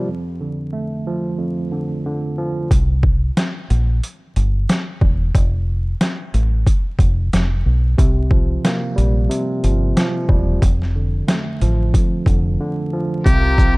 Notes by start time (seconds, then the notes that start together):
0.07 F2
0.40 D3
0.73 A3
1.07 F3
1.38 F2
1.71 D3
2.06 D3
2.38 F3
2.71 C2, kick, closed hi-hat
3.03 kick
3.37 snare, closed hi-hat
3.70 A#1, closed hi-hat
4.03 closed hi-hat
4.36 G1, closed hi-hat
4.69 snare, closed hi-hat
5.01 E1, kick
5.35 F1, kick, closed hi-hat
6.01 snare, closed hi-hat
6.34 A1, closed hi-hat
6.67 kick, closed hi-hat
6.99 F1, kick, closed hi-hat
7.33 F1, snare, closed hi-hat
7.66 B1
7.98 C2 C3, kick, closed hi-hat
8.31 F3, kick
8.65 A#3, snare, closed hi-hat
8.96 A#1 G3, closed hi-hat
9.30 C3, closed hi-hat
9.64 G1 F3, closed hi-hat
9.96 F3, snare, closed hi-hat
10.29 E1 G3, kick
10.62 F1 F2, kick, closed hi-hat
10.82 snare
10.95 D3
11.27 A3, snare, closed hi-hat
11.61 A1 F3, closed hi-hat
11.93 F2, kick, closed hi-hat
12.26 F1 D3, kick, closed hi-hat
12.60 D3
12.93 F3
13.25 C2 C3 C4 F4 G4 A#4, kick, closed hi-hat
13.58 F3, kick, shaker